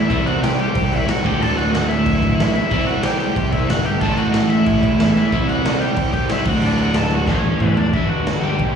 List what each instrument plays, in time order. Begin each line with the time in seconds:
Already playing: lead electric guitar E4 E5
0.10 picked electric bass C2, overdriven electric guitar C3 G3 C4, kick, crash
0.26 lead electric guitar F#4 F#5, crash
0.42 picked electric bass C2, lead electric guitar G4 G5, snare, crash
0.59 lead electric guitar G4 G5, crash
0.75 picked electric bass C2, kick, crash
0.92 picked electric bass C2, lead electric guitar E4 E5, kick, crash
1.08 picked electric bass C2, lead electric guitar F#4 F#5, snare, crash
1.24 picked electric bass D1, overdriven electric guitar D2 A2 D3, lead electric guitar G4 G5, kick, crash
1.41 picked electric bass D1, lead electric guitar A4 A5, crash
1.57 lead electric guitar F#4 F#5, crash
1.74 picked electric bass D1, snare, crash
1.88 lead electric guitar E4 E5, crash
2.06 picked electric bass D1, kick, crash
2.23 picked electric bass D1, kick, crash
2.38 picked electric bass A1, snare, crash
2.54 lead electric guitar E4 E5, crash
2.71 picked electric bass C2, overdriven electric guitar C3 G3 C4, kick, crash
2.86 lead electric guitar F#4 F#5, crash
3.03 picked electric bass C2, lead electric guitar G4 G5, snare, crash
3.19 lead electric guitar G4 G5, crash
3.36 picked electric bass C2, kick, crash
3.52 picked electric bass C2, lead electric guitar E4 E5, kick, crash
3.69 picked electric bass G1, lead electric guitar F#4 F#5, snare, crash
3.86 lead electric guitar G4 G5, crash
4.01 picked electric bass A1, overdriven electric guitar A2 E3 A3, lead electric guitar A4 A5, kick, crash
4.17 lead electric guitar F#4 F#5, crash
4.33 picked electric bass A1, snare, crash
4.48 lead electric guitar E4 E5, crash
4.66 picked electric bass A1, kick, crash
4.83 picked electric bass A1, kick, crash
4.98 picked electric bass E2, snare, crash
5.17 lead electric guitar E4 E5, crash
5.32 picked electric bass C2, overdriven electric guitar C3 G3 C4, kick, crash
5.48 lead electric guitar F#4 F#5, crash
5.63 picked electric bass C2, snare, crash
5.80 lead electric guitar G4 G5, crash
5.96 picked electric bass C2, kick, crash
6.12 picked electric bass C2, lead electric guitar G4 G5, kick, crash
6.29 picked electric bass C2, lead electric guitar E4 E5, snare, crash
6.45 picked electric bass D1, overdriven electric guitar D2 A2 D3, lead electric guitar F#4 F#5, kick, crash
6.62 picked electric bass D1, lead electric guitar D4 D5, crash
6.78 lead electric guitar F#4 F#5, crash
6.94 picked electric bass D1, lead electric guitar A4, snare, crash
6.98 lead electric guitar A5
7.11 lead electric guitar F#4, crash
7.15 lead electric guitar F#5
7.27 picked electric bass A1, overdriven electric guitar A2 E3 A3, lead electric guitar C#4, kick, snare
7.31 lead electric guitar C#5
7.44 picked electric bass A1
7.60 picked electric bass E2, mid tom
7.77 lead electric guitar D4 D5, floor tom
7.93 picked electric bass G1, overdriven electric guitar G2 D3 G3, lead electric guitar E4 E5, kick, crash
8.08 picked electric bass G1, lead electric guitar F#4 F#5
8.26 picked electric bass G1, snare, crash
8.40 picked electric bass G1, overdriven electric guitar G3, lead electric guitar G4 G5
8.45 overdriven electric guitar G2 D3
8.59 picked electric bass B1, kick, crash